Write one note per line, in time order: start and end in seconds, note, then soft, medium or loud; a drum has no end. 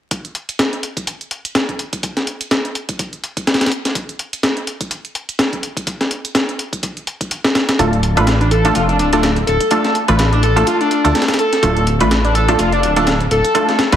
0.11 kick loud
0.11 closed hi-hat medium
0.25 closed hi-hat soft
0.35 closed hi-hat medium
0.49 closed hi-hat medium
0.59 snare loud
0.59 closed hi-hat medium
0.59 closed hi-hat soft
0.73 closed hi-hat soft
0.83 closed hi-hat medium
0.97 kick medium
0.97 closed hi-hat medium
1.07 closed hi-hat medium
1.07 closed hi-hat soft
1.21 closed hi-hat soft
1.31 closed hi-hat medium
1.45 closed hi-hat medium
1.55 snare loud
1.55 closed hi-hat medium
1.55 closed hi-hat soft
1.69 kick medium
1.69 closed hi-hat soft
1.79 closed hi-hat medium
1.93 kick medium
1.93 closed hi-hat medium
2.03 kick loud
2.03 closed hi-hat medium
2.17 snare soft
2.17 closed hi-hat soft
2.27 closed hi-hat medium
2.41 closed hi-hat medium
2.51 snare loud
2.51 closed hi-hat medium
2.65 closed hi-hat soft
2.75 closed hi-hat medium
2.89 kick medium
2.89 closed hi-hat medium
2.99 kick loud
2.99 closed hi-hat soft
2.99 closed hi-hat medium
3.13 closed hi-hat soft
3.24 closed hi-hat medium
3.37 kick medium
3.37 closed hi-hat medium
3.47 snare medium
3.47 closed hi-hat medium
3.47 closed hi-hat soft
3.54 snare medium
3.54 closed hi-hat medium
3.61 snare medium
3.61 closed hi-hat medium
3.61 closed hi-hat soft
3.66 snare medium
3.66 closed hi-hat medium
3.71 closed hi-hat medium
3.85 snare soft
3.85 closed hi-hat medium
3.95 kick loud
3.95 closed hi-hat medium
3.95 closed hi-hat soft
4.09 closed hi-hat soft
4.19 closed hi-hat medium
4.33 closed hi-hat medium
4.43 snare loud
4.43 closed hi-hat medium
4.43 closed hi-hat soft
4.57 closed hi-hat soft
4.67 closed hi-hat medium
4.81 kick medium
4.81 closed hi-hat medium
4.91 closed hi-hat medium
4.91 closed hi-hat soft
5.05 closed hi-hat soft
5.15 closed hi-hat medium
5.29 closed hi-hat medium
5.39 snare loud
5.39 closed hi-hat medium
5.39 closed hi-hat soft
5.53 kick medium
5.53 closed hi-hat soft
5.63 closed hi-hat medium
5.77 kick medium
5.77 closed hi-hat medium
5.87 kick loud
5.87 closed hi-hat medium
5.87 closed hi-hat soft
6.01 snare soft
6.01 closed hi-hat soft
6.11 closed hi-hat medium
6.25 closed hi-hat medium
6.35 snare loud
6.35 closed hi-hat medium
6.35 closed hi-hat soft
6.49 closed hi-hat soft
6.59 closed hi-hat medium
6.73 kick medium
6.73 closed hi-hat medium
6.83 kick loud
6.83 closed hi-hat soft
6.83 closed hi-hat medium
6.97 closed hi-hat soft
7.07 closed hi-hat medium
7.21 kick medium
7.21 closed hi-hat medium
7.31 closed hi-hat soft
7.31 closed hi-hat medium
7.44 snare loud
7.44 closed hi-hat soft
7.55 snare loud
7.55 closed hi-hat medium
7.69 snare loud
7.69 closed hi-hat medium
7.79 8.18 D1 medium
7.79 7.91 A3 medium
7.79 7.91 D4 medium
7.79 7.91 F4 medium
7.79 7.91 A4 medium
7.79 kick loud
7.79 closed hi-hat medium
7.79 closed hi-hat soft
7.93 closed hi-hat soft
8.03 closed hi-hat medium
8.17 8.71 A1 medium
8.17 8.26 A3 medium
8.17 8.26 D4 medium
8.17 8.26 F4 medium
8.17 8.26 B4 loud
8.17 closed hi-hat medium
8.27 snare loud
8.27 closed hi-hat medium
8.27 closed hi-hat soft
8.41 8.50 D4 medium
8.41 closed hi-hat soft
8.51 8.74 A4 medium
8.51 closed hi-hat medium
8.65 8.81 A3 medium
8.65 8.81 D4 medium
8.65 8.81 F4 medium
8.65 8.81 A4 loud
8.65 kick medium
8.65 closed hi-hat medium
8.75 9.00 F1 medium
8.75 8.85 F4 medium
8.75 closed hi-hat medium
8.75 closed hi-hat soft
8.89 8.96 D4 medium
8.89 closed hi-hat soft
8.99 9.43 D1 medium
8.99 9.09 D4 medium
8.99 closed hi-hat medium
9.13 9.29 A3 medium
9.13 9.29 D4 medium
9.13 9.20 D4 loud
9.13 9.29 F4 medium
9.13 9.29 A4 medium
9.13 closed hi-hat medium
9.23 snare loud
9.23 closed hi-hat medium
9.23 closed hi-hat soft
9.36 kick medium
9.36 closed hi-hat soft
9.47 9.58 D1 medium
9.47 9.94 A4 medium
9.47 closed hi-hat medium
9.61 kick medium
9.61 closed hi-hat medium
9.71 9.83 A3 medium
9.71 9.83 D4 medium
9.71 9.83 F4 medium
9.71 9.83 A4 medium
9.71 kick loud
9.71 closed hi-hat soft
9.71 closed hi-hat medium
9.85 snare soft
9.85 closed hi-hat soft
9.95 closed hi-hat medium
10.08 10.63 A1 medium
10.08 10.18 A3 medium
10.08 10.18 D4 medium
10.08 10.18 F4 medium
10.08 10.18 B4 loud
10.08 closed hi-hat medium
10.19 snare loud
10.19 closed hi-hat soft
10.19 closed hi-hat medium
10.33 10.42 D4 medium
10.33 closed hi-hat soft
10.43 10.66 A4 medium
10.43 closed hi-hat medium
10.56 10.73 A3 medium
10.56 10.73 D4 medium
10.56 10.73 F4 medium
10.56 10.73 A4 loud
10.56 kick medium
10.56 closed hi-hat medium
10.67 10.77 F4 medium
10.67 kick loud
10.67 closed hi-hat soft
10.67 closed hi-hat medium
10.81 10.88 D4 medium
10.81 closed hi-hat soft
10.91 11.01 D4 medium
10.91 closed hi-hat medium
11.04 11.13 D2 medium
11.04 11.21 A3 medium
11.04 11.21 D4 medium
11.04 11.12 D4 loud
11.04 11.21 F4 medium
11.04 11.21 A4 medium
11.04 kick medium
11.04 closed hi-hat medium
11.15 snare medium
11.15 closed hi-hat medium
11.15 closed hi-hat soft
11.22 snare medium
11.22 closed hi-hat medium
11.28 snare medium
11.28 closed hi-hat medium
11.28 closed hi-hat soft
11.34 snare medium
11.34 closed hi-hat medium
11.39 11.86 A4 medium
11.39 closed hi-hat medium
11.53 snare soft
11.53 closed hi-hat medium
11.62 12.02 D1 loud
11.62 11.75 A3 medium
11.62 11.75 D4 medium
11.62 11.75 F4 medium
11.62 11.75 A4 medium
11.62 kick loud
11.62 closed hi-hat medium
11.62 closed hi-hat soft
11.77 closed hi-hat soft
11.87 closed hi-hat medium
12.00 12.55 A1 medium
12.00 12.10 A3 loud
12.00 12.10 D4 medium
12.00 12.10 F4 medium
12.00 12.10 B4 loud
12.00 closed hi-hat medium
12.11 snare loud
12.11 closed hi-hat medium
12.25 12.34 D4 medium
12.25 closed hi-hat soft
12.35 12.58 A4 medium
12.35 closed hi-hat medium
12.48 12.65 A3 medium
12.48 12.65 D4 medium
12.48 12.65 F4 medium
12.48 12.65 A4 loud
12.48 kick medium
12.48 closed hi-hat medium
12.59 12.84 F1 medium
12.59 12.69 F4 medium
12.59 closed hi-hat soft
12.59 closed hi-hat medium
12.72 12.80 D4 medium
12.72 closed hi-hat soft
12.83 13.27 D1 medium
12.83 12.93 D4 medium
12.83 closed hi-hat medium
12.96 13.13 A3 medium
12.96 13.13 D4 medium
12.96 13.04 D4 loud
12.96 13.13 F4 medium
12.96 13.13 A4 medium
12.96 closed hi-hat medium
13.07 snare loud
13.07 closed hi-hat soft
13.07 closed hi-hat medium
13.20 kick medium
13.20 closed hi-hat soft
13.31 13.41 D1 medium
13.31 13.78 A4 medium
13.31 closed hi-hat medium
13.45 kick medium
13.45 closed hi-hat medium
13.55 13.67 A3 medium
13.55 13.67 D4 medium
13.55 13.67 F4 medium
13.55 13.67 A4 medium
13.55 kick loud
13.55 closed hi-hat soft
13.55 closed hi-hat medium
13.69 snare soft
13.69 closed hi-hat soft
13.79 snare loud
13.79 closed hi-hat medium
13.92 13.96 A1 medium
13.92 13.96 A3 medium
13.92 13.96 D4 medium
13.92 13.96 F4 medium
13.92 13.96 B4 loud
13.92 snare medium
13.92 closed hi-hat medium